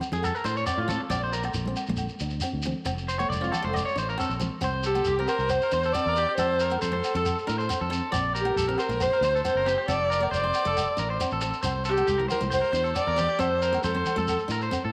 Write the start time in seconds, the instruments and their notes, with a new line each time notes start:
0.01 low conga, low agogo, shekere
0.12 fingered electric bass F2, steel-string acoustic guitar A3, clean electric guitar G#4, high conga, shekere
0.23 clean electric guitar A4, low agogo, shekere
0.35 clean electric guitar A#4, shekere
0.44 fingered electric bass A2, steel-string acoustic guitar D4, clean electric guitar C5, shekere
0.57 clean electric guitar C#5, shekere
0.66 steel-string acoustic guitar C4, clean electric guitar D5, low agogo, shekere
0.78 fingered electric bass A2, clean electric guitar F4
0.88 steel-string acoustic guitar C4, clean electric guitar A4, high conga, low conga, shekere
1.00 muted clean electric guitar stroke
1.10 fingered electric bass A#1, steel-string acoustic guitar C4, clean electric guitar D5, low agogo, shekere
1.24 clean electric guitar C5
1.33 clean electric guitar A#4, shekere
1.43 steel-string acoustic guitar A#3, muted clean electric guitar stroke, low agogo, shekere
1.54 fingered electric bass A#1, high conga, shekere
1.65 steel-string acoustic guitar C4, high conga
1.76 low agogo, shekere
1.87 fingered electric bass A#1, steel-string acoustic guitar A#3, high conga, shekere
1.96 low agogo, shekere
2.09 shekere
2.20 fingered electric bass D2, steel-string acoustic guitar D4, shekere
2.30 shekere
2.40 steel-string acoustic guitar C4, low agogo, shekere
2.53 fingered electric bass D2
2.62 steel-string acoustic guitar C4, high conga, low conga, shekere
2.85 fingered electric bass F1, steel-string acoustic guitar C4, muted clean electric guitar stroke, low agogo, shekere
2.98 shekere
3.08 clean electric guitar C5, shekere
3.19 steel-string acoustic guitar A#3, clean electric guitar C#5, low agogo, shekere
3.30 fingered electric bass F1, clean electric guitar D5, high conga, shekere
3.41 steel-string acoustic guitar C4, clean electric guitar F4, high conga, shekere
3.52 clean electric guitar A4, low conga, low agogo, shekere
3.63 fingered electric bass F1, steel-string acoustic guitar A3, clean electric guitar C5, high conga
3.73 clean electric guitar D5, low agogo, shekere
3.85 clean electric guitar C#5, shekere
3.96 fingered electric bass A1, steel-string acoustic guitar D4, clean electric guitar C5, shekere
4.09 clean electric guitar A#4, shekere
4.18 steel-string acoustic guitar C4, clean electric guitar A4, low agogo, shekere
4.29 fingered electric bass A#1, shekere
4.39 steel-string acoustic guitar C4, high conga, low conga, shekere
4.61 fingered electric bass C2, steel-string acoustic guitar C4, clean electric guitar C5, low agogo, shekere
4.83 viola G4, clean electric guitar A4, shekere
4.95 steel-string acoustic guitar A#3, low agogo, shekere
5.05 fingered electric bass C2, clean electric guitar G4, shekere
5.19 steel-string acoustic guitar C4, clean electric guitar A#4
5.28 viola A#4, clean electric guitar C5, low agogo, shekere
5.39 fingered electric bass C2, shekere
5.49 viola C5, muted clean electric guitar stroke, low agogo, shekere
5.62 clean electric guitar A#4, shekere
5.71 fingered electric bass E2, steel-string acoustic guitar D4, clean electric guitar C5, shekere
5.83 clean electric guitar A4, shekere
5.93 steel-string acoustic guitar C4, viola D5, low agogo, shekere
6.06 fingered electric bass E2, clean electric guitar A#4
6.16 clean electric guitar G4, shekere
6.29 clean electric guitar G4
6.37 fingered electric bass F2, steel-string acoustic guitar C4, clean electric guitar A4, viola C5, low agogo, shekere
6.59 clean electric guitar A#4, shekere
6.70 steel-string acoustic guitar A#3, low agogo, shekere
6.82 fingered electric bass F2, viola A4, clean electric guitar C5, shekere
6.92 steel-string acoustic guitar C4, clean electric guitar C5
7.04 low agogo, shekere
7.15 fingered electric bass F2, steel-string acoustic guitar A3, clean electric guitar A4, shekere
7.25 low agogo, shekere
7.39 shekere
7.47 fingered electric bass A2, steel-string acoustic guitar D4, clean electric guitar A#4, shekere
7.58 clean electric guitar C5, shekere
7.69 steel-string acoustic guitar C4, low agogo, shekere
7.81 fingered electric bass F2, clean electric guitar A4
7.90 steel-string acoustic guitar C4, clean electric guitar A4, shekere
8.12 fingered electric bass A#1, steel-string acoustic guitar C4, clean electric guitar D5, low agogo, shekere
8.35 viola G4, clean electric guitar A#4, shekere
8.45 steel-string acoustic guitar A#3, low agogo
8.56 fingered electric bass A#1, clean electric guitar A4, shekere
8.68 steel-string acoustic guitar C4, clean electric guitar A#4
8.78 viola A#4, clean electric guitar C5, low agogo, shekere
8.89 fingered electric bass A#1, steel-string acoustic guitar A#3, shekere
9.00 clean electric guitar C5, viola C5, low agogo, shekere
9.13 clean electric guitar A#4, shekere
9.21 fingered electric bass D2, steel-string acoustic guitar D4, clean electric guitar C5, shekere
9.35 clean electric guitar A4, shekere
9.45 steel-string acoustic guitar C4, viola C5, low agogo, shekere
9.55 fingered electric bass F#1, clean electric guitar A#4
9.66 steel-string acoustic guitar C4, clean electric guitar G4, shekere
9.78 clean electric guitar G4
9.88 fingered electric bass F1, steel-string acoustic guitar C4, clean electric guitar A4, viola D5, low agogo, shekere
10.10 clean electric guitar A#4, shekere
10.20 steel-string acoustic guitar A#3, low agogo
10.31 fingered electric bass F1, clean electric guitar C5, viola D5, shekere
10.44 steel-string acoustic guitar C4, clean electric guitar C5
10.54 low agogo, shekere
10.65 fingered electric bass F1, steel-string acoustic guitar A3, clean electric guitar A4, shekere
10.77 low agogo, shekere
10.97 fingered electric bass A1, steel-string acoustic guitar D4, clean electric guitar A#4, shekere
11.10 clean electric guitar C5
11.20 steel-string acoustic guitar C4, low agogo, shekere
11.31 fingered electric bass A1, clean electric guitar A4, shekere
11.41 steel-string acoustic guitar C4, clean electric guitar A4, shekere
11.53 shekere
11.63 fingered electric bass C2, steel-string acoustic guitar C4, clean electric guitar C5, low agogo, shekere
11.85 clean electric guitar A4, shekere
11.89 viola G4
11.97 steel-string acoustic guitar A#3, low agogo, shekere
12.07 fingered electric bass C2, clean electric guitar G4, high conga, shekere
12.18 steel-string acoustic guitar E4, clean electric guitar A#4, high conga
12.28 viola A#4, clean electric guitar C5, low conga, low agogo, shekere
12.41 fingered electric bass C2, steel-string acoustic guitar A#3, high conga, shekere
12.50 clean electric guitar C5, viola C5, low agogo, shekere
12.62 clean electric guitar A#4, shekere
12.73 fingered electric bass E2, steel-string acoustic guitar D4, clean electric guitar C5, shekere
12.84 clean electric guitar A4, shekere
12.95 steel-string acoustic guitar C4, viola D5, low agogo, shekere
13.07 fingered electric bass E2, clean electric guitar A#4
13.16 steel-string acoustic guitar C4, clean electric guitar G4, low conga, shekere
13.29 clean electric guitar G4
13.39 fingered electric bass F2, steel-string acoustic guitar C4, clean electric guitar A4, viola C5, low agogo, shekere
13.62 clean electric guitar A#4, shekere
13.73 steel-string acoustic guitar A#3, low agogo, shekere
13.83 fingered electric bass F2, viola A4, clean electric guitar C5, high conga, shekere
13.95 steel-string acoustic guitar C4, clean electric guitar C5, high conga
14.06 low conga, low agogo, shekere
14.16 fingered electric bass F2, steel-string acoustic guitar A3, clean electric guitar A4, high conga, shekere
14.28 low agogo, shekere
14.39 shekere
14.48 fingered electric bass A2, steel-string acoustic guitar D4, clean electric guitar A#4, shekere
14.61 clean electric guitar C5, shekere
14.71 steel-string acoustic guitar C4, low agogo, shekere
14.85 fingered electric bass A2, clean electric guitar A4